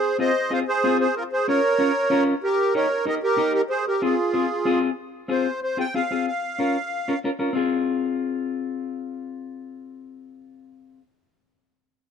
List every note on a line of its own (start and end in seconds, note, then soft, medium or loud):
0.00 0.17 G#4 medium
0.00 0.17 C5 medium
0.18 0.30 C4 medium
0.18 0.31 F4 medium
0.18 0.31 G#4 medium
0.18 0.50 C5 medium
0.18 0.53 D#5 medium
0.50 0.62 C4 medium
0.50 0.62 F4 medium
0.50 0.62 G#4 medium
0.50 0.59 C5 medium
0.50 0.60 F5 medium
0.68 0.98 G#4 medium
0.68 0.98 C5 medium
0.84 1.06 C4 medium
0.84 1.06 F4 medium
0.84 1.06 G#4 medium
1.00 1.15 G#4 medium
1.00 1.15 C5 medium
1.17 1.24 F4 medium
1.17 1.23 A#4 medium
1.33 1.47 G#4 medium
1.33 1.47 C5 medium
1.48 1.59 C#4 medium
1.48 1.59 F4 medium
1.48 2.24 A#4 medium
1.48 1.59 A#4 medium
1.48 2.23 C#5 medium
1.78 1.90 C#4 medium
1.78 1.90 F4 medium
1.78 1.90 A#4 medium
2.10 2.33 C#4 medium
2.10 2.33 F4 medium
2.10 2.34 A#4 medium
2.44 2.73 G4 medium
2.44 2.75 A#4 medium
2.75 2.86 D#4 medium
2.75 2.86 G4 medium
2.75 2.86 A#4 medium
2.75 3.05 A#4 medium
2.75 3.05 C#5 medium
3.06 3.17 D#4 medium
3.06 3.18 G4 medium
3.06 3.18 A#4 medium
3.06 3.15 A#4 medium
3.06 3.15 D#5 medium
3.23 3.53 G4 medium
3.23 3.53 A#4 medium
3.37 3.61 D#4 medium
3.37 3.61 G4 medium
3.37 3.61 A#4 medium
3.54 3.61 G4 medium
3.54 3.62 A#4 medium
3.70 3.86 G#4 medium
3.70 3.85 C5 medium
3.87 4.02 G4 medium
3.87 4.02 A#4 medium
4.02 4.14 C4 medium
4.02 4.14 F4 medium
4.02 4.79 F4 medium
4.02 4.14 G#4 medium
4.02 4.79 G#4 medium
4.33 4.45 C4 medium
4.33 4.45 F4 medium
4.33 4.46 G#4 medium
4.65 4.88 C4 medium
4.65 4.89 F4 medium
4.65 4.89 G#4 medium
5.28 5.46 C4 medium
5.28 5.47 F4 medium
5.28 5.47 G#4 medium
5.28 5.60 C5 medium
5.63 5.78 C5 medium
5.77 5.84 C4 medium
5.77 5.84 F4 medium
5.77 5.84 G#4 medium
5.77 5.94 G5 loud
5.94 6.00 C4 medium
5.94 6.00 F4 medium
5.94 6.01 G#4 medium
5.94 6.26 F5 medium
6.11 6.27 C4 medium
6.11 6.27 F4 medium
6.11 6.27 G#4 medium
6.28 7.19 F5 medium
6.59 6.75 C#4 medium
6.59 6.76 F4 medium
6.59 6.76 A#4 medium
7.08 7.13 C#4 medium
7.08 7.13 F4 medium
7.08 7.13 A#4 medium
7.24 7.29 C#4 medium
7.24 7.29 F4 medium
7.24 7.29 A#4 medium
7.39 7.53 C#4 medium
7.39 7.54 F4 medium
7.39 7.55 A#4 medium
7.53 10.99 C4 medium
7.53 11.01 F4 medium
7.53 11.03 G#4 medium